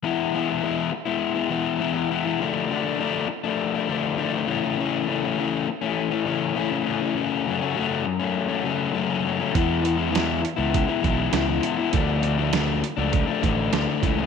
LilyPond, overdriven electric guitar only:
\new Staff \with { instrumentName = "Overdriven electric guitar" } { \time 4/4 \key e \mixolydian \tempo 4 = 101 <e gis b e'>8 <e gis b e'>16 <gis b e'>16 <e gis b e'>8. <gis b e'>8 <gis b e'>16 <e gis b e'>8 <e gis b e'>16 <gis b e'>16 <e gis b e'>16 <gis b e'>16 | <d f a d'>8 <d f a d'>16 <f a d'>16 <d f a d'>8. <f a d'>8 <f a d'>16 <d f a d'>8 <d f a d'>16 <f a d'>16 <cis e a cis'>16 <e a cis'>16 | <cis e a cis'>8 <cis e a cis'>16 <e a cis'>16 <cis e a cis'>8. <e a cis'>8 <e a cis'>16 <cis e a cis'>8 <cis e a cis'>16 <e a cis'>16 <cis e a cis'>16 <e a cis'>16 | <fis, cis fis a cis'>8 <cis fis a cis'>16 <fis a cis'>16 <fis, cis fis a cis'>8. <fis a cis'>8 <fis a cis'>16 <cis fis a cis'>8 <fis, cis fis a cis'>16 <fis a cis'>16 <cis fis a cis'>16 <fis a cis'>16 |
<e gis b e'>8 <e gis b e'>16 <gis b e'>16 <e gis b e'>8. <gis b e'>8 <gis b e'>16 <e gis b e'>8 <e gis b e'>16 <gis b e'>16 <e gis b e'>16 <gis b e'>16 | <d f a d'>8 <d f a d'>16 <f a d'>16 <d f a d'>8. <f a d'>8 <f a d'>16 <d f a d'>8 <d f a d'>16 <f a d'>16 <cis e a cis'>16 <e a cis'>16 | }